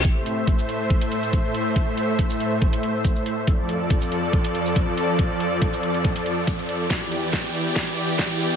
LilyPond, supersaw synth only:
\new Staff \with { instrumentName = "Supersaw synth" } { \time 4/4 \key a \minor \tempo 4 = 140 <a, a c'' e''>1~ | <a, a c'' e''>1 | <f, f a' d''>1~ | <f, f a' d''>1 |
<e, e g' d''>1 | }